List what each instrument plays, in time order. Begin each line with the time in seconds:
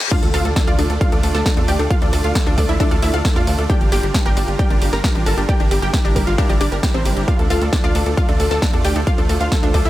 Already playing: reverse cymbal
0.00 snare
0.11 supersaw synth A3 D4 F4 D5, synth arpeggio sound D4, synth pluck F4 F5, kick, closed hi-hat, crash, impact
0.23 analog synth bass D2, synth pluck A4, closed hi-hat
0.34 analog synth bass D2, supersaw synth A3 D4 F4 D5, synth pluck F4 F5, synth arpeggio sound A4, open hi-hat
0.45 analog synth bass D2, synth pluck A4, closed hi-hat
0.56 supersaw synth A3 D4 F4 D5, synth arpeggio sound D4, synth pluck A4, kick, snare, closed hi-hat
0.67 analog synth bass D2, synth pluck F4 F5, synth arpeggio sound D5, closed hi-hat
0.79 analog synth bass D2, supersaw synth A3 D4 F4 D5, synth arpeggio sound D4, synth pluck A4, open hi-hat
0.90 analog synth bass D2, synth pluck A4, closed hi-hat
1.01 supersaw synth A3 D4 F4 D5, synth pluck F4 F5, synth arpeggio sound F5, kick, closed hi-hat
1.12 analog synth bass D2, synth arpeggio sound D4, synth pluck A4, closed hi-hat
1.23 analog synth bass D2, supersaw synth A3 D4 F4 D5, synth pluck A4, open hi-hat
1.34 analog synth bass D2, synth pluck A4 A5, synth arpeggio sound A4, snare, closed hi-hat
1.46 supersaw synth A3 D4 F4 D5, synth pluck A4, kick, snare, closed hi-hat
1.57 analog synth bass E2, synth arpeggio sound D4, synth pluck A4, closed hi-hat
1.68 analog synth bass D2, supersaw synth A3 D4 F4 D5, synth pluck G4 G5, synth arpeggio sound D5, open hi-hat
1.79 analog synth bass D2, synth arpeggio sound D4, synth pluck A4, closed hi-hat
1.90 supersaw synth A3 D4 F4 D5, synth pluck F4 F5, synth arpeggio sound F5, kick, closed hi-hat
2.02 analog synth bass D2, synth arpeggio sound D4, synth pluck A4, closed hi-hat
2.13 analog synth bass D2, supersaw synth A3 D4 F4 D5, synth arpeggio sound A4, synth pluck A4, open hi-hat
2.24 analog synth bass D2, synth pluck F4 F5, closed hi-hat
2.35 supersaw synth A3 D4 F4 D5, synth pluck A4, kick, snare, closed hi-hat
2.46 analog synth bass D2, synth arpeggio sound D4, synth pluck A4, closed hi-hat
2.58 analog synth bass D2, supersaw synth A3 D4 F4 D5, synth pluck A4, synth arpeggio sound D5, kick, open hi-hat
2.69 analog synth bass D2, synth pluck E4 E5, closed hi-hat
2.80 supersaw synth A3 D4 F4 D5, synth arpeggio sound D4, synth pluck A4, kick, closed hi-hat
2.91 analog synth bass D2, synth pluck A4, synth arpeggio sound F5, closed hi-hat
3.02 analog synth bass D2, supersaw synth A3 D4 F4 D5, synth pluck E4 E5, open hi-hat
3.14 analog synth bass D2, synth pluck A4, synth arpeggio sound F5, closed hi-hat
3.25 supersaw synth A3 D4 F4 D5, synth pluck A4, kick, snare, open hi-hat
3.36 analog synth bass E2, synth pluck F4 F5, synth arpeggio sound A4, closed hi-hat
3.47 analog synth bass D2, supersaw synth A3 D4 F4 D5, synth pluck A4, open hi-hat
3.58 analog synth bass D2, synth pluck A4, closed hi-hat
3.70 supersaw synth G3 D4 F4 A#4, synth arpeggio sound D4, synth pluck G4 G5, kick, closed hi-hat
3.81 analog synth bass G1, synth pluck G4, closed hi-hat
3.92 analog synth bass G1, supersaw synth G3 D4 F4 A#4, synth arpeggio sound G4, synth pluck G4 G5, open hi-hat
4.03 analog synth bass G1, synth pluck G4, closed hi-hat
4.14 supersaw synth G3 D4 F4 A#4, synth arpeggio sound D4, synth pluck G4, kick, snare, closed hi-hat
4.26 analog synth bass G1, synth pluck G4 G5, synth arpeggio sound A#4, closed hi-hat
4.37 analog synth bass G1, supersaw synth G3 D4 F4 A#4, synth arpeggio sound D4, synth pluck G4, open hi-hat
4.48 analog synth bass G1, synth pluck G4, closed hi-hat
4.59 supersaw synth G3 D4 F4 A#4, synth pluck G4 G5, synth arpeggio sound D5, kick, closed hi-hat
4.70 analog synth bass G1, synth arpeggio sound D4, synth pluck G4, closed hi-hat
4.82 analog synth bass G1, supersaw synth G3 D4 F4 A#4, synth pluck G4, open hi-hat
4.93 analog synth bass G1, synth arpeggio sound G4, synth pluck A#4 A#5, snare, closed hi-hat
5.04 supersaw synth G3 D4 F4 A#4, synth pluck G4, kick, snare, closed hi-hat
5.15 analog synth bass A1, synth arpeggio sound D4, synth pluck G4, closed hi-hat
5.26 analog synth bass G1, supersaw synth G3 D4 F4 A#4, synth pluck A4 A5, synth arpeggio sound A#4, open hi-hat
5.38 analog synth bass G1, synth arpeggio sound D4, synth pluck G4, closed hi-hat
5.49 supersaw synth G3 D4 E4 A#4, synth pluck G4 G5, synth arpeggio sound D5, kick, closed hi-hat
5.60 analog synth bass G1, synth arpeggio sound D4, synth pluck G4, closed hi-hat
5.71 analog synth bass G1, supersaw synth G3 D4 E4 A#4, synth pluck G4, synth arpeggio sound G4, open hi-hat
5.82 analog synth bass G1, synth pluck G4 G5, closed hi-hat
5.94 supersaw synth G3 D4 E4 A#4, synth pluck G4, kick, snare, closed hi-hat
6.05 analog synth bass G1, synth arpeggio sound D4, synth pluck G4, closed hi-hat
6.16 analog synth bass G1, supersaw synth G3 D4 E4 A#4, synth pluck G4, synth arpeggio sound A#4, kick, open hi-hat
6.27 analog synth bass G1, synth pluck F4 F5, closed hi-hat
6.38 supersaw synth G3 D4 E4 A#4, synth arpeggio sound D4, synth pluck G4, kick, closed hi-hat
6.49 analog synth bass G1, synth pluck G4, synth arpeggio sound D5, closed hi-hat
6.61 analog synth bass G1, supersaw synth G3 D4 E4 A#4, synth pluck D4 D5, synth arpeggio sound G4, open hi-hat
6.72 analog synth bass G1, synth pluck G4, synth arpeggio sound A#4, closed hi-hat
6.83 supersaw synth G3 D4 E4 A#4, synth pluck G4, kick, snare, open hi-hat
6.94 analog synth bass A1, synth pluck C4 C5, synth arpeggio sound D4, closed hi-hat
7.05 analog synth bass G1, supersaw synth G3 D4 E4 A#4, synth pluck G4, open hi-hat
7.17 analog synth bass G1, synth pluck G4, closed hi-hat
7.28 supersaw synth A3 D4 F4 D5, synth arpeggio sound D4, synth pluck F4 F5, kick, closed hi-hat
7.39 analog synth bass D2, synth pluck A4, closed hi-hat
7.50 analog synth bass D2, supersaw synth A3 D4 F4 D5, synth pluck F4 F5, synth arpeggio sound A4, open hi-hat
7.61 analog synth bass D2, synth pluck A4, closed hi-hat
7.73 supersaw synth A3 D4 F4 D5, synth arpeggio sound D4, synth pluck A4, kick, snare, closed hi-hat
7.84 analog synth bass D2, synth pluck F4 F5, synth arpeggio sound D5, closed hi-hat
7.95 analog synth bass D2, supersaw synth A3 D4 F4 D5, synth arpeggio sound D4, synth pluck A4, open hi-hat
8.06 analog synth bass D2, synth pluck A4, closed hi-hat
8.17 supersaw synth A3 D4 F4 D5, synth pluck F4 F5, synth arpeggio sound F5, kick, closed hi-hat
8.29 analog synth bass D2, synth arpeggio sound D4, synth pluck A4, closed hi-hat
8.40 analog synth bass D2, supersaw synth A3 D4 F4 D5, synth pluck A4, open hi-hat
8.51 analog synth bass D2, synth pluck A4 A5, synth arpeggio sound A4, snare, closed hi-hat
8.62 supersaw synth A3 D4 F4 D5, synth pluck A4, kick, snare, closed hi-hat
8.73 analog synth bass E2, synth arpeggio sound D4, synth pluck A4, closed hi-hat
8.85 analog synth bass D2, supersaw synth A3 D4 F4 D5, synth pluck G4 G5, synth arpeggio sound D5, open hi-hat
8.96 analog synth bass D2, synth arpeggio sound D4, synth pluck A4, closed hi-hat
9.07 supersaw synth A3 D4 F4 C5, synth pluck F4 F5, synth arpeggio sound F5, kick, closed hi-hat
9.18 analog synth bass D2, synth arpeggio sound D4, synth pluck A4, closed hi-hat
9.29 analog synth bass D2, supersaw synth A3 D4 F4 C5, synth arpeggio sound A4, synth pluck A4, open hi-hat
9.40 analog synth bass D2, synth pluck F4 F5, closed hi-hat
9.52 supersaw synth A3 D4 F4 C5, synth pluck A4, kick, snare, closed hi-hat
9.63 analog synth bass D2, synth arpeggio sound D4, synth pluck A4, closed hi-hat
9.74 analog synth bass D2, supersaw synth A3 D4 F4 C5, synth pluck A4, synth arpeggio sound D5, kick, open hi-hat
9.85 analog synth bass D2, synth pluck E4 E5, closed hi-hat